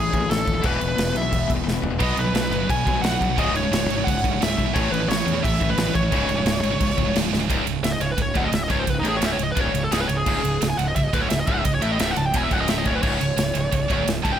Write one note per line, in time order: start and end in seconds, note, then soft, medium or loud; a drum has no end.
0.00 0.11 A2 medium
0.00 0.12 E3 medium
0.00 0.63 A3 medium
0.00 0.62 C#4 medium
0.00 1.97 E4 medium
0.00 0.30 G#4 loud
0.00 0.62 C#5 medium
0.12 0.27 A1 loud
0.12 0.19 A2 medium
0.12 0.19 E3 medium
0.12 kick medium
0.12 crash medium
0.20 0.28 A2 medium
0.20 0.28 E3 medium
0.29 0.43 A1 medium
0.29 0.37 A2 medium
0.29 0.37 E3 medium
0.29 0.65 A4 medium
0.29 snare loud
0.29 crash medium
0.38 0.44 A2 medium
0.38 0.44 E3 medium
0.45 0.61 D#1 medium
0.45 0.53 A2 medium
0.45 0.52 E3 medium
0.45 kick medium
0.45 crash medium
0.53 0.61 A2 medium
0.53 0.62 E3 medium
0.61 0.78 E1 loud
0.61 0.78 E2 medium
0.61 0.78 B2 medium
0.61 0.80 E3 loud
0.61 1.99 G#3 medium
0.61 3.34 B3 medium
0.61 3.35 B4 loud
0.61 kick loud
0.61 crash medium
0.66 1.18 B4 loud
0.79 0.95 E1 medium
0.79 0.87 E2 medium
0.79 0.87 B2 medium
0.79 crash medium
0.88 0.94 E2 medium
0.88 0.95 B2 medium
0.96 1.12 E1 medium
0.96 1.12 E2 medium
0.96 1.12 B2 medium
0.96 snare loud
0.96 crash loud
1.13 1.29 B1 medium
1.13 1.20 E2 medium
1.13 1.20 B2 medium
1.13 crash medium
1.17 1.48 E5 loud
1.22 1.29 E2 medium
1.22 1.30 B2 medium
1.31 1.46 E1 loud
1.31 1.46 E2 medium
1.31 1.46 B2 medium
1.31 kick loud
1.31 crash medium
1.47 1.64 E1 medium
1.47 1.54 E2 medium
1.47 1.54 B2 medium
1.47 kick medium
1.47 crash medium
1.55 1.62 E2 medium
1.55 1.63 B2 medium
1.64 1.80 E1 medium
1.64 1.73 E2 medium
1.64 1.72 B2 medium
1.68 snare medium
1.73 1.81 E2 medium
1.73 1.81 B2 medium
1.82 1.97 E1 medium
1.82 1.89 E2 medium
1.82 1.89 B2 medium
1.82 floor tom medium
1.90 1.98 E2 medium
1.90 1.97 B2 medium
1.98 2.14 B1 loud
1.98 2.16 B2 loud
1.98 2.15 F#3 loud
1.98 3.35 F#3 medium
1.98 2.16 B3 loud
1.98 3.36 D#4 medium
1.98 kick loud
1.98 crash loud
2.03 2.19 D#5 loud
2.16 2.31 B1 medium
2.16 2.24 B2 medium
2.16 2.23 F#3 medium
2.16 2.71 B4 loud
2.16 crash medium
2.24 2.32 B2 medium
2.24 2.32 F#3 medium
2.33 2.48 B1 medium
2.33 2.49 B2 medium
2.33 2.49 F#3 medium
2.33 snare loud
2.33 crash medium
2.50 2.65 F#1 medium
2.50 2.60 B2 medium
2.50 2.60 F#3 medium
2.50 crash medium
2.61 2.68 B2 medium
2.61 2.69 F#3 medium
2.69 2.83 B1 medium
2.69 2.85 B2 medium
2.69 2.85 F#3 medium
2.69 3.05 G#5 loud
2.69 kick medium
2.69 crash medium
2.87 3.00 B1 medium
2.87 2.95 B2 medium
2.87 2.94 F#3 medium
2.87 kick medium
2.87 crash medium
2.96 3.03 B2 medium
2.96 3.04 F#3 medium
3.02 3.17 B1 medium
3.02 3.12 B2 medium
3.02 3.11 F#3 medium
3.02 3.38 F#5 loud
3.02 snare loud
3.02 crash medium
3.12 3.21 B2 medium
3.12 3.20 F#3 medium
3.21 3.35 B1 medium
3.21 3.29 B2 medium
3.21 3.29 F#3 medium
3.21 kick medium
3.21 crash medium
3.30 3.37 B2 medium
3.30 3.37 F#3 medium
3.36 3.51 C#1 loud
3.36 3.53 C#2 loud
3.36 3.54 G#2 medium
3.36 3.54 C#3 medium
3.36 4.73 G#3 medium
3.36 4.72 C#4 medium
3.36 7.45 E4 medium
3.36 7.44 C#5 loud
3.36 3.56 D#5 loud
3.36 kick loud
3.36 crash medium
3.52 3.67 C#1 medium
3.52 3.63 C#2 medium
3.52 3.62 G#2 medium
3.52 4.08 C#5 loud
3.52 crash medium
3.63 3.71 C#2 medium
3.63 3.72 G#2 medium
3.71 3.85 C#1 loud
3.71 3.87 C#2 medium
3.71 3.87 G#2 loud
3.71 snare loud
3.71 crash loud
3.88 4.03 G#1 loud
3.88 3.96 C#2 medium
3.88 3.95 G#2 medium
3.88 crash medium
3.97 4.05 C#2 medium
3.97 4.05 G#2 medium
4.04 4.20 C#1 loud
4.04 4.22 C#2 medium
4.04 4.22 G#2 loud
4.04 4.40 F#5 loud
4.04 kick loud
4.04 crash medium
4.18 snare soft
4.24 4.37 C#1 medium
4.24 4.31 C#2 medium
4.24 4.31 G#2 medium
4.24 kick medium
4.24 crash medium
4.32 4.40 C#2 medium
4.32 4.40 G#2 medium
4.41 4.54 C#1 medium
4.41 4.49 C#2 medium
4.41 4.48 G#2 medium
4.41 4.77 E5 loud
4.41 snare loud
4.41 crash medium
4.49 4.56 C#2 medium
4.49 4.56 G#2 medium
4.57 4.72 B1 medium
4.57 4.64 C#2 medium
4.57 4.63 G#2 medium
4.57 kick medium
4.57 crash medium
4.65 4.73 C#2 medium
4.65 4.74 G#2 medium
4.73 4.89 A1 loud
4.73 4.90 A2 loud
4.73 4.89 E3 loud
4.73 4.90 A3 loud
4.73 6.10 A3 medium
4.73 7.46 C#4 medium
4.73 4.91 C#5 loud
4.73 kick loud
4.73 crash medium
4.90 5.05 A1 loud
4.90 4.99 A2 medium
4.90 4.99 E3 medium
4.90 5.08 B4 medium
4.90 crash medium
5.00 5.06 A2 medium
5.00 5.07 E3 medium
5.08 5.22 A1 loud
5.08 5.24 A2 medium
5.08 5.24 E3 medium
5.08 5.44 C#5 medium
5.08 snare loud
5.08 crash medium
5.25 5.40 E2 medium
5.25 5.34 A2 medium
5.25 5.33 E3 medium
5.25 crash medium
5.34 5.42 A2 medium
5.34 5.43 E3 medium
5.43 5.58 A1 loud
5.43 5.59 A2 medium
5.43 5.59 E3 medium
5.43 5.70 E5 loud
5.43 kick loud
5.43 crash medium
5.54 snare soft
5.61 5.74 A1 medium
5.61 5.68 A2 medium
5.61 5.68 E3 medium
5.61 kick medium
5.61 crash medium
5.69 5.76 A2 medium
5.69 5.77 E3 medium
5.69 5.95 B4 medium
5.77 5.90 A1 loud
5.77 5.85 A2 medium
5.77 5.85 E3 medium
5.77 snare loud
5.77 crash medium
5.86 5.93 A2 medium
5.86 5.93 E3 loud
5.94 6.09 A1 medium
5.94 6.02 A2 medium
5.94 6.01 E3 medium
5.94 7.11 C#5 medium
5.94 kick medium
5.94 crash medium
6.03 6.12 A2 medium
6.03 6.11 E3 loud
6.12 6.26 C#1 loud
6.12 6.28 C#2 loud
6.12 6.28 G#2 loud
6.12 6.29 C#3 loud
6.12 7.48 G#3 medium
6.12 kick loud
6.12 crash medium
6.29 6.43 C#1 medium
6.29 6.36 C#2 medium
6.29 6.37 G#2 medium
6.29 crash medium
6.38 6.45 C#2 medium
6.38 6.45 G#2 medium
6.46 6.59 C#1 loud
6.46 6.62 C#2 medium
6.46 6.62 G#2 medium
6.46 snare loud
6.46 crash medium
6.63 6.77 G#1 medium
6.63 6.70 C#2 medium
6.63 6.70 G#2 medium
6.63 crash medium
6.71 6.79 C#2 medium
6.71 6.79 G#2 medium
6.80 6.94 C#1 medium
6.80 6.96 C#2 medium
6.80 6.96 G#2 medium
6.80 kick loud
6.80 crash loud
6.90 snare soft
6.97 7.11 C#1 medium
6.97 7.05 C#2 medium
6.97 7.05 G#2 medium
6.97 kick medium
6.97 crash medium
7.06 7.14 C#2 medium
7.06 7.15 G#2 medium
7.15 7.29 C#1 medium
7.15 7.23 C#2 medium
7.15 7.23 G#2 medium
7.15 snare loud
7.15 crash medium
7.24 7.32 C#2 medium
7.24 7.32 G#2 medium
7.32 7.46 C#1 medium
7.32 7.40 C#2 medium
7.32 7.40 G#2 medium
7.32 snare medium
7.41 7.48 C#2 medium
7.41 7.49 G#2 medium
7.49 7.65 C#1 medium
7.49 7.66 C#2 loud
7.49 kick loud
7.49 ride loud
7.66 7.82 C#1 medium
7.66 7.80 C#2 medium
7.66 ride medium
7.83 7.99 C#1 medium
7.83 7.97 C#2 medium
7.83 7.92 E5 medium
7.83 snare loud
7.83 ride loud
7.92 8.01 D#5 medium
8.00 8.16 C#1 medium
8.00 8.14 C#2 medium
8.00 8.10 C#5 medium
8.00 ride medium
8.11 8.19 B4 medium
8.18 8.34 C#1 medium
8.18 8.32 C#2 medium
8.18 kick medium
8.18 ride loud
8.22 8.37 C#5 medium
8.34 8.52 D1 medium
8.34 8.52 D2 loud
8.34 8.44 F#5 loud
8.34 kick loud
8.34 ride medium
8.45 8.54 D#5 medium
8.52 8.68 C#1 medium
8.52 8.66 C#2 medium
8.52 8.62 E5 medium
8.52 snare loud
8.52 ride medium
8.64 8.71 D#5 medium
8.70 8.86 C#1 medium
8.70 8.85 C#2 loud
8.70 8.79 C#5 medium
8.70 kick loud
8.70 ride medium
8.79 8.87 C5 medium
8.86 9.03 C#1 medium
8.86 9.01 C#2 medium
8.86 8.97 B4 medium
8.86 kick medium
8.86 ride medium
8.99 9.20 A2 loud
8.99 9.06 D#4 medium
9.05 9.21 A1 loud
9.05 9.15 G#4 medium
9.05 ride medium
9.17 9.38 C#2 loud
9.17 9.23 C#5 medium
9.21 9.37 C#1 medium
9.21 snare loud
9.21 ride loud
9.26 9.32 E5 medium
9.32 9.40 C#5 medium
9.38 9.54 C#1 medium
9.38 9.53 C#2 medium
9.38 ride medium
9.43 9.50 D#5 loud
9.52 9.58 B4 medium
9.56 9.73 D1 medium
9.56 9.73 D2 loud
9.56 kick loud
9.56 ride medium
9.61 9.83 C#5 medium
9.73 9.90 C#1 medium
9.73 9.88 C#2 medium
9.73 ride medium
9.84 9.92 A4 medium
9.91 10.07 C#1 medium
9.91 10.08 C#2 medium
9.91 10.00 G#4 medium
9.91 snare loud
9.91 ride loud
10.01 10.09 B4 medium
10.08 10.25 C#1 medium
10.08 10.23 C#2 medium
10.08 10.16 C#5 loud
10.08 ride medium
10.17 10.65 G#4 medium
10.26 10.42 C#1 loud
10.26 10.42 C#2 loud
10.26 kick loud
10.26 crash loud
10.43 10.59 C#1 medium
10.43 10.57 C#2 medium
10.43 ride medium
10.62 10.77 C#1 medium
10.62 10.75 C#2 medium
10.62 snare loud
10.62 ride loud
10.70 10.78 G#5 medium
10.78 10.94 C#1 medium
10.78 10.92 C#2 medium
10.78 10.86 F#5 loud
10.78 ride medium
10.88 10.95 D#5 medium
10.95 11.12 C#1 medium
10.95 11.09 C#2 medium
10.95 11.03 E5 medium
10.95 kick medium
10.95 ride medium
11.03 11.12 D#5 medium
11.13 11.29 D1 medium
11.13 11.28 D2 loud
11.13 11.21 B4 medium
11.13 kick loud
11.13 ride medium
11.21 11.29 C#5 medium
11.29 11.47 C#1 medium
11.29 11.43 C#2 medium
11.29 11.38 E5 medium
11.29 snare loud
11.29 ride medium
11.40 11.48 D#5 medium
11.46 11.63 C#1 medium
11.46 11.64 C#2 loud
11.46 11.54 E5 medium
11.46 kick loud
11.46 ride medium
11.54 11.59 F#5 loud
11.59 11.64 E5 medium
11.65 11.81 C#1 medium
11.65 11.79 C#2 medium
11.65 11.73 D#5 loud
11.65 kick medium
11.65 ride medium
11.75 11.82 C#5 medium
11.81 11.98 A1 medium
11.81 11.98 A2 loud
11.81 11.90 E5 loud
11.81 ride medium
11.92 11.99 D#5 medium
11.99 12.15 C#1 loud
11.99 12.15 C#2 loud
11.99 12.11 E5 medium
11.99 snare loud
11.99 ride loud
12.11 12.18 F#5 medium
12.16 12.33 C#1 medium
12.16 12.30 C#2 medium
12.16 12.26 A5 loud
12.16 ride medium
12.26 12.36 G5 medium
12.34 12.50 E1 loud
12.34 12.51 E2 loud
12.34 12.43 G#5 loud
12.34 kick loud
12.34 ride loud
12.43 12.53 E5 medium
12.51 12.83 C#1 medium
12.51 12.85 C#2 loud
12.51 12.60 F#5 loud
12.51 kick loud
12.51 ride medium
12.61 12.69 D#5 medium
12.68 12.78 E5 medium
12.68 snare loud
12.68 ride medium
12.78 12.86 D#5 medium
12.85 13.02 D1 medium
12.85 13.02 D2 medium
12.85 12.95 C#5 loud
12.85 kick loud
12.85 ride medium
12.95 13.02 B4 medium
13.02 13.19 C#1 medium
13.02 13.19 C#2 loud
13.02 14.03 C#5 medium
13.02 kick loud
13.02 crash loud
13.20 13.36 C#1 medium
13.20 13.34 C#2 medium
13.20 ride medium
13.37 13.54 C#1 medium
13.37 13.51 C#2 medium
13.37 snare loud
13.37 ride loud
13.55 13.71 C#1 medium
13.55 13.69 C#2 medium
13.55 ride medium
13.72 13.88 C#1 medium
13.72 13.86 C#2 medium
13.72 kick medium
13.72 ride medium
13.90 14.06 D1 medium
13.90 14.07 D2 loud
13.90 kick loud
13.90 ride medium
14.07 14.23 C#1 medium
14.07 14.21 C#2 medium
14.07 snare loud
14.07 ride medium
14.24 14.39 C#1 medium
14.24 14.39 C#2 loud
14.24 14.32 A5 loud
14.24 kick loud
14.24 ride medium
14.33 14.39 G5 medium